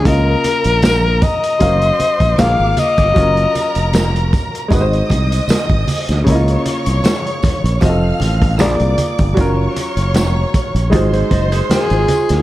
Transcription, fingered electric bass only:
X:1
M:4/4
L:1/16
Q:"Swing 16ths" 1/4=77
K:Db
V:1 name="Fingered electric bass" clef=bass
D,,2 z B,,,4 z G,,,2 z B,,, B,,, A,,, z =G,,, | G,,,2 z F,,,4 z A,,,2 C,,2 z A,,, z =D,, | D,,2 z C,, z3 B,,, F,,,2 =A,,,2 B,,, C,, z =G,,, | G,,,2 z G,,, F,,,2 z B,,, A,,,2 G,,,2 z A,,, z =D,, |]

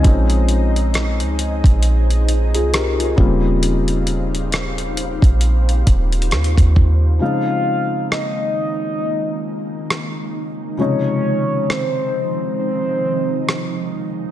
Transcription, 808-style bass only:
X:1
M:4/4
L:1/16
Q:"Swing 16ths" 1/4=67
K:Bbdor
V:1 name="808-style bass" clef=bass
B,,,4- B,,, D,,2 B,,,4 C,,3 E,,,2- | E,,,6- E,,, B,,,3 E,,,2 E,, E,, E,,2 | z16 | z16 |]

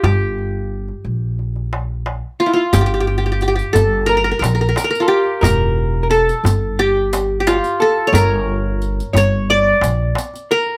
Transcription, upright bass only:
X:1
M:4/4
L:1/8
Q:1/4=89
K:none
V:1 name="Upright bass" clef=bass
G,,,3 _B,,,4 z | G,,,3 G,,,2 _B,,, z2 | E,,,3 G,,,4 z | G,,,3 G,,,2 _B,,, z2 |]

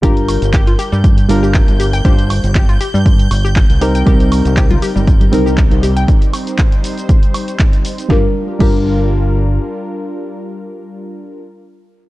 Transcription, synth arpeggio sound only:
X:1
M:4/4
L:1/16
Q:"Swing 16ths" 1/4=119
K:Gm
V:1 name="Synth arpeggio sound"
G z3 G F G G, z3 G z2 G g | G z3 G F G G, z3 G z2 G g | G z3 G F G G, z3 G z2 G g | z16 |
G z3 G z8 z3 | z16 |]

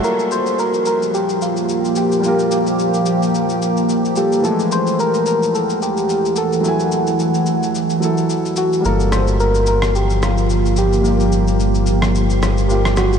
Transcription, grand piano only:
X:1
M:4/4
L:1/16
Q:"Swing 16ths" 1/4=109
K:Gm
V:1 name="Grand piano"
^f z12 z3 | z16 | z16 | z16 |
z16 | z16 |]
V:2 name="Grand piano"
[G,B,FA]16 | [G,B,FB]12- [G,B,FB]2 [G,B,FA]2 | [=E,^G,A,=E]16 | [^F,A,=E^g]8- [F,A,Eg]2 [F,A,EA]6 |
[G,B,FA]16 | [G,B,FG]12 [G,B,FG]4 |]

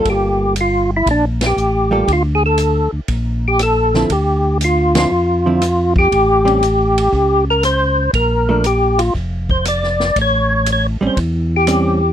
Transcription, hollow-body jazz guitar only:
X:1
M:4/4
L:1/8
Q:"Swing" 1/4=119
K:Gdor
V:1 name="Hollow-body jazz guitar"
[G,B,FA]2 z4 z [G,B,FA] | z6 z [D,F,CE] | z3 [D,F,CE] z [D,F,CE] z2 | z [G,^B,^C] z6 |
z [F,A,D] z6 | z3 [G,^B,^C] z2 [G,B,C] z |]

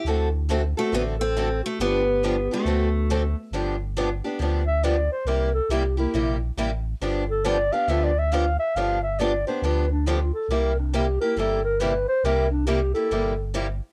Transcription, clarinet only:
X:1
M:4/4
L:1/8
Q:"Swing" 1/4=138
K:Gmix
V:1 name="Clarinet"
z3 ^F F A2 F | G3 ^F4 z | z4 z e d c | _B A G E2 z3 |
z A d f (3e d e f e | f e d c B D F A | _B D G B A B =B c | _B D G A3 z2 |]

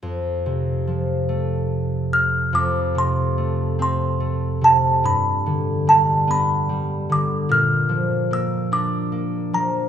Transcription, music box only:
X:1
M:6/8
L:1/8
Q:3/8=49
K:F
V:1 name="Music box"
z4 z f' | d' c'2 c'2 a | =b2 a b2 d' | f'2 e' d'2 b |]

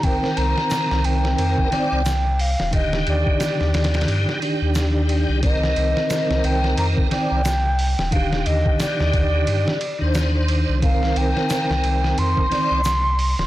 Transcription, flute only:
X:1
M:4/4
L:1/8
Q:"Swing 16ths" 1/4=89
K:Cm
V:1 name="Flute"
g b2 g4 f | e d4 z3 | e3 g b g3 | f e d4 z2 |
f g3 c'4 |]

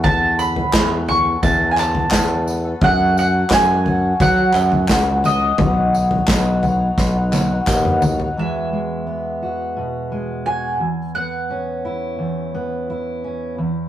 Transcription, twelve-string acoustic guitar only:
X:1
M:4/4
L:1/16
Q:1/4=86
K:E
V:1 name="Twelve-string acoustic guitar"
[E,B,CA]2 [E,B,CA]2 [E,B,C]2 [E,B,CA]3 [B,CA] [B,CA] [B,CA] [E,B,CA]2 [E,B,CA] [B,CA] | [F,,C,F,A,CF]2 [F,A,CF]2 [F,,C,F,A,CF]2 [F,A,CF]3 [F,A,CF] [F,CF] [F,A,CF] [F,,C,F,A,CF]2 [F,A,CF] [F,A,CF] | [B,,F,B,DF]2 [F,B,DF]2 [B,,F,B,DF]2 [F,B,DF]3 [B,DF] [F,B,DF] [B,DF] [B,,F,B,DF]2 [F,B,DF] [B,DF] | z16 |
z16 |]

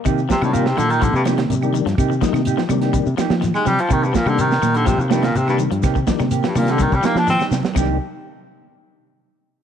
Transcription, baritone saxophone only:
X:1
M:4/4
L:1/16
Q:1/4=125
K:Cm
V:1 name="Baritone saxophone" clef=bass
z2 C, =A,, B,, C, D, E, D, G,, z6 | z12 z A, G, F, | E, G,, B,, D, E,3 D, C, E,, G,, B,, C, G,, z2 | z4 z G,, B,, D, E, G, B, D C2 z2 |
z16 |]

